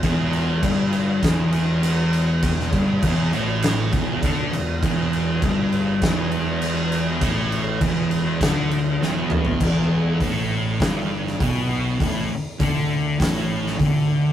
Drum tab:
CC |x-x-x-x-x-x-x-x-|x-x-x-x-x-x-x-x-|x-x-x-x-x-x-x-x-|x-x-x-x-x-x-----|
HH |----------------|----------------|----------------|----------------|
SD |--------o-------|-o------o-------|--------o-------|--------o---o---|
T2 |----------------|----------------|----------------|--------------o-|
FT |----------------|----------------|----------------|---------------o|
BD |o---o---o-------|o-o-o-----o-o---|o---o---o-------|o---o---o-------|

CC |x---------------|----------------|
HH |----o---o---o---|o---o---o---o---|
SD |--------o--o----|--------o--o----|
T2 |----------------|----------------|
FT |----------------|----------------|
BD |o---o---o---o---|o---o---o---o---|